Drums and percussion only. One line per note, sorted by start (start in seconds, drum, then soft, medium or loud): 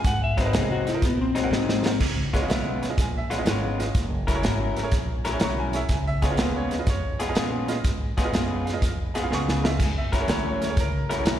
0.04 kick loud
0.04 snare soft
0.04 closed hi-hat medium
0.38 kick medium
0.38 snare soft
0.38 closed hi-hat medium
0.53 snare loud
0.53 closed hi-hat medium
0.87 snare soft
0.87 closed hi-hat medium
1.02 kick loud
1.02 snare soft
1.02 closed hi-hat medium
1.35 snare soft
1.35 closed hi-hat medium
1.53 snare medium
1.69 snare medium
1.86 snare loud
2.01 kick loud
2.01 snare soft
2.01 crash medium
2.34 kick medium
2.34 snare soft
2.34 closed hi-hat medium
2.50 snare loud
2.50 closed hi-hat medium
2.83 snare soft
2.83 closed hi-hat medium
2.98 kick loud
2.98 snare soft
2.98 closed hi-hat medium
3.31 snare soft
3.31 closed hi-hat medium
3.46 snare loud
3.46 closed hi-hat medium
3.80 snare soft
3.80 closed hi-hat medium
3.95 kick loud
3.95 snare soft
3.95 closed hi-hat medium
4.28 kick medium
4.28 snare soft
4.28 closed hi-hat medium
4.43 snare loud
4.43 closed hi-hat medium
4.76 snare soft
4.76 closed hi-hat medium
4.92 kick loud
4.92 snare soft
4.92 closed hi-hat medium
5.25 snare soft
5.25 closed hi-hat medium
5.40 snare loud
5.40 closed hi-hat medium
5.73 snare soft
5.73 closed hi-hat medium
5.89 kick loud
5.89 snare soft
5.89 closed hi-hat medium
6.22 kick medium
6.22 snare soft
6.22 closed hi-hat medium
6.37 snare loud
6.37 closed hi-hat medium
6.71 snare soft
6.71 closed hi-hat medium
6.87 kick loud
6.87 snare soft
6.87 closed hi-hat medium
7.20 snare soft
7.20 closed hi-hat medium
7.35 snare loud
7.35 closed hi-hat medium
7.68 snare soft
7.68 closed hi-hat medium
7.84 kick loud
7.84 snare soft
7.84 closed hi-hat medium
8.18 kick medium
8.18 snare soft
8.18 closed hi-hat medium
8.34 snare loud
8.34 closed hi-hat medium
8.67 snare soft
8.67 closed hi-hat medium
8.82 kick loud
8.82 snare soft
8.82 closed hi-hat medium
9.15 snare soft
9.15 closed hi-hat medium
9.32 snare medium
9.49 snare medium
9.65 snare loud
9.80 kick loud
9.80 snare soft
9.80 closed hi-hat medium
9.80 crash medium
10.13 kick medium
10.13 snare soft
10.13 closed hi-hat medium
10.28 snare loud
10.28 closed hi-hat medium
10.62 snare soft
10.62 closed hi-hat medium
10.77 kick loud
10.77 snare soft
10.77 closed hi-hat medium
11.11 snare soft
11.11 closed hi-hat medium
11.26 snare loud
11.26 closed hi-hat medium